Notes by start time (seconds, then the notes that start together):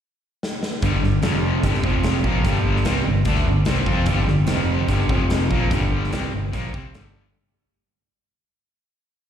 0.43 snare
0.63 snare
0.82 G1 G2 D3 G3, kick, closed hi-hat
1.02 G1 G2 D3, snare
1.22 F1 F2 C3 F3, snare, closed hi-hat
1.63 G1 G2 D3 G3, kick, closed hi-hat
1.75 snare
1.83 F1 F2 C3 F3, kick
2.03 snare, closed hi-hat
2.24 A#1 A#2 F3 A#3, kick
2.44 G1 G2 D3 G3, kick, closed hi-hat
2.76 snare
2.85 C2 C3 G3 C4, snare, closed hi-hat
3.04 G1 G2 D3
3.25 D2 D3 A3 D4, kick, closed hi-hat
3.36 snare
3.46 G1 G2 D3
3.65 C2 C3 G3 C4, snare, closed hi-hat
3.86 F2 F3 C4 F4, kick
4.06 G1 G2 D3 G3, kick, closed hi-hat
4.28 G1 G2 D3, snare
4.47 F1 F2 C3 F3, snare, closed hi-hat
4.88 G1 G2 D3 G3, kick, closed hi-hat
5.09 F1 F2 C3 F3, kick
5.30 snare, closed hi-hat
5.50 A#1 A#2 F3 A#3, kick
5.71 G1 G2 D3 G3, kick, closed hi-hat
6.04 snare
6.10 C2 C3 G3 C4, snare, closed hi-hat
6.33 G1 G2 D3
6.52 A#1 A#2 F3 A#3, kick, closed hi-hat
6.73 C2 C3 G3 C4, kick
6.94 G1 G2 D3 G3, snare, closed hi-hat